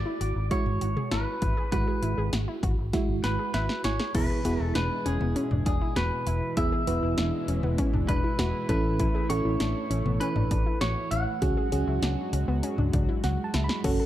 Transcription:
Already playing: G#3 E4 F#4 D5
0.06 E4
0.21 G#1 F#4, closed hi-hat
0.36 G#1
0.51 G#3 E4 F#4 C#5, kick, closed hi-hat
0.66 G#1, mid tom
0.81 G#1 F#4, closed hi-hat
0.97 G#4, mid tom
1.11 G#1 E4 B4, snare, closed hi-hat
1.42 G#1 E4, kick, closed hi-hat
1.57 G#4
1.72 G#1 G#3 E4 F#4 B4, kick, closed hi-hat
1.87 G#4
2.02 G#1 E4, closed hi-hat
2.18 G#1 G#4
2.33 G#1 F#4, snare, closed hi-hat
2.48 E4
2.63 G#1 F#4, kick, closed hi-hat
2.78 G#1
2.93 G#3 E4 F#4, kick, snare, closed hi-hat
3.09 G#1
3.24 G#1 F#4 B4, snare, closed hi-hat
3.39 G#4
3.54 G#1 E4 B4 E5, snare, closed hi-hat
3.69 snare
3.84 G#1 E4 C#5 G#5, snare, closed hi-hat
3.99 G#4, snare
4.15 E1 B2 E3 G#3 B3 E4 G#4 B4, kick, closed hi-hat, crash
4.30 G#4
4.45 E1 B3 E4 F#4 G#4, closed hi-hat
4.60 E1 E4 A4
4.75 E1 D4 B4, snare, closed hi-hat
5.06 E1 C#4 G#4, closed hi-hat
5.21 E1 B3, mid tom
5.36 C#4, closed hi-hat
5.51 E1 D4, mid tom
5.66 E1 D4 G#4, kick, closed hi-hat
5.81 E4
5.96 E1 F#4 B4, snare, closed hi-hat
6.27 E1 E4, closed hi-hat
6.57 E1 B2 G#3 B3 E4 G#4 E5, kick, closed hi-hat
6.72 G#4
6.87 E1 B3 E4 F#4 B4, closed hi-hat
7.03 E1 E4
7.18 E1 D4, snare, closed hi-hat
7.48 E1 C#4, closed hi-hat
7.63 E1 B3, mid tom
7.78 C#4, kick, closed hi-hat
7.93 E1 D4, mid tom
8.08 E1 D4 B4, kick, closed hi-hat
8.24 E4
8.39 E1 F#4, snare, closed hi-hat
8.69 A1 A3 C#4 E4 A4 B4, kick, closed hi-hat
9.00 E4, kick, closed hi-hat
9.15 G#4
9.30 A1 C#4 E4 F#4 A4 C#5, closed hi-hat
9.45 A1 E4
9.60 A1 D4, snare, closed hi-hat
9.90 A1 C#4, closed hi-hat
10.05 A1 B3, mid tom
10.20 C#4 B4, closed hi-hat
10.36 A1 D4, mid tom
10.51 A1 D4, kick, closed hi-hat
10.66 E4
10.81 A1 F#4 C#5, snare, closed hi-hat
11.11 A1 E4 F#5, closed hi-hat
11.42 C#2 F#3 G#3 C#4 F#4 G#4, kick, closed hi-hat
11.57 G#4
11.72 C#2 C#4 F#4 G#4, closed hi-hat
11.87 C#2 E4
12.02 C#2 D4, snare, closed hi-hat
12.33 C#2 C#4, closed hi-hat
12.48 C#2 B3
12.63 C#4, closed hi-hat
12.78 C#2 D4, mid tom
12.93 C#2 D4, kick, closed hi-hat, mid tom
13.09 E4
13.24 C#2 F#4 F#5, snare, closed hi-hat
13.44 A5
13.54 C#2 E4, snare, closed hi-hat
13.64 B5
13.69 snare
13.84 F#1 C#3 F#3 A3 C#4 F#4 A4, kick, closed hi-hat, crash
14.00 A4

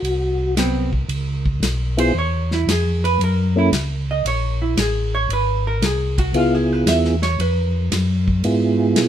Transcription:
Already playing: F#4
0.02 C2, ride
0.57 F#3 B3 C4, snare, hi-hat pedal, ride
0.93 kick
1.08 C#2, ride
1.46 kick
1.60 B1, snare, hi-hat pedal, ride
1.97 B3 E4 F4 G#4 C5, ride
2.14 E2
2.18 C#5
2.51 E4, snare
2.67 F2, snare, hi-hat pedal, ride
2.71 G#4
3.04 B4, ride
3.19 F#2, ride
3.24 A#4
3.56 A#3 C#4 E4 A4
3.71 C#2, snare, hi-hat pedal, ride
4.11 D#5
4.25 A#1 C#5, ride
4.62 E4
4.76 A1, snare, hi-hat pedal, ride
4.80 G#4
5.15 C#5
5.29 G#1, ride
5.33 B4
5.67 A#4
5.81 C2, snare, hi-hat pedal, ride
5.86 G#4
6.18 F#4, kick, ride
6.33 C#2 B3 E4 F4 G#4, ride
6.38 F4
6.55 G#4
6.72 B4
6.86 E2 E5, snare, hi-hat pedal, ride
7.05 snare
7.22 C#5, snare, ride
7.39 F2 B4, ride
7.92 F#2, snare, hi-hat pedal, ride
8.28 kick
8.44 G#2 B3 E4 F4 G#4, ride
8.96 B2, snare, hi-hat pedal, ride

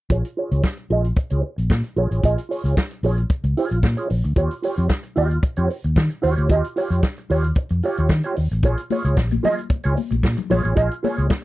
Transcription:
0.10 A#1 F4 G#4 C#5, kick, closed hi-hat
0.24 muted clean electric guitar stroke, closed hi-hat
0.37 F4 G#4 C#5
0.51 C#2 F4 G#4 C#5, closed hi-hat
0.64 kick, snare
0.77 muted clean electric guitar stroke, closed hi-hat
0.90 A#1 F4 G#4 D#5
1.04 muted clean electric guitar stroke, closed hi-hat
1.16 muted clean electric guitar stroke, kick, closed hi-hat
1.30 C#2 F4 G#4 C#5, closed hi-hat
1.43 muted clean electric guitar stroke
1.56 A#1, muted clean electric guitar stroke, closed hi-hat
1.70 A#2, muted clean electric guitar stroke, kick, snare
1.84 muted clean electric guitar stroke, closed hi-hat
1.96 A#1 F4 G#4 C#5
2.10 A1 F4 G#4 C#5, closed hi-hat
2.23 A#1 F4 G#4 D#5, kick, closed hi-hat
2.37 muted clean electric guitar stroke, closed hi-hat
2.49 F4 G#4 C#5, open hi-hat
2.63 C#2 F4 G#4 C#5, closed hi-hat
2.77 muted clean electric guitar stroke, kick, snare
2.91 muted clean electric guitar stroke, closed hi-hat
3.03 A#1 F4 G#4 C#5, open hi-hat
3.18 muted clean electric guitar stroke, closed hi-hat
3.30 kick, closed hi-hat
3.44 C#2, muted clean electric guitar stroke, closed hi-hat
3.57 F4 G#4 C#5, open hi-hat
3.71 A#1, muted clean electric guitar stroke, closed hi-hat
3.83 A#2, muted clean electric guitar stroke, kick, snare
3.97 F4 G#4 C#5, closed hi-hat
4.10 A#1, muted clean electric guitar stroke, open hi-hat
4.24 D2, muted clean electric guitar stroke, closed hi-hat
4.36 D#2 F4 G4 C#5, kick, closed hi-hat
4.51 muted clean electric guitar stroke, closed hi-hat
4.62 F4 G4 C#5, open hi-hat
4.77 F2 F4 G4 C#5, closed hi-hat
4.89 muted clean electric guitar stroke, kick, snare
5.03 muted clean electric guitar stroke, closed hi-hat
5.16 D#2 F4 G4 D#5, open hi-hat
5.30 muted clean electric guitar stroke, closed hi-hat
5.43 muted clean electric guitar stroke, kick, closed hi-hat
5.56 F2 F4 G4 C#5, closed hi-hat
5.70 muted clean electric guitar stroke, open hi-hat
5.84 D#2, muted clean electric guitar stroke, closed hi-hat
5.96 D#3, muted clean electric guitar stroke, kick, snare
6.10 muted clean electric guitar stroke, closed hi-hat
6.22 D#2 F4 G4 C#5, open hi-hat
6.36 D2 F4 G4 C#5, closed hi-hat
6.49 D#2 F4 G4 D#5, kick, closed hi-hat
6.64 muted clean electric guitar stroke, closed hi-hat
6.76 F4 G4 C#5, open hi-hat
6.90 F2 F4 G4 C#5, closed hi-hat
7.03 muted clean electric guitar stroke, kick, snare
7.16 muted clean electric guitar stroke, closed hi-hat
7.30 D#2 F4 G4 C#5, open hi-hat
7.44 muted clean electric guitar stroke, closed hi-hat
7.55 muted clean electric guitar stroke, kick, closed hi-hat
7.69 F2, muted clean electric guitar stroke, closed hi-hat
7.83 F4 G4 C#5, open hi-hat
7.97 D#2 F4 G4 C#5, closed hi-hat
8.09 D#3, muted clean electric guitar stroke, kick, snare
8.23 F4 G4 C#5, closed hi-hat
8.36 D#2, muted clean electric guitar stroke, open hi-hat
8.51 A1, muted clean electric guitar stroke, closed hi-hat
8.63 A#1 F4 G#4 C#5, kick, closed hi-hat, muted conga
8.77 muted clean electric guitar stroke, closed hi-hat
8.90 F4 G#4 C#5, open hi-hat, high conga
9.05 C#2 F4 G#4 C#5, closed hi-hat
9.17 A#1, muted clean electric guitar stroke, kick, snare, muted conga
9.31 muted clean electric guitar stroke, closed hi-hat, high conga
9.43 F4 G#4 D#5, open hi-hat, muted conga, high conga, low conga
9.57 muted clean electric guitar stroke, closed hi-hat
9.70 muted clean electric guitar stroke, kick, closed hi-hat, muted conga
9.83 C#2 F4 G#4 C#5, closed hi-hat
9.96 muted clean electric guitar stroke, open hi-hat, high conga
10.11 A#1, muted clean electric guitar stroke, closed hi-hat, high conga
10.23 A#2, muted clean electric guitar stroke, kick, snare
10.37 muted clean electric guitar stroke, closed hi-hat, low conga
10.50 A#1 F4 G#4 C#5, open hi-hat, muted conga, high conga, low conga
10.63 A1 F4 G#4 C#5, closed hi-hat
10.76 A#1 F4 G#4 D#5, kick, closed hi-hat
10.90 muted clean electric guitar stroke, closed hi-hat
11.03 F4 G#4 C#5, open hi-hat, muted conga, high conga
11.17 C#2 F4 G#4 C#5, closed hi-hat
11.29 muted clean electric guitar stroke, kick, snare, muted conga

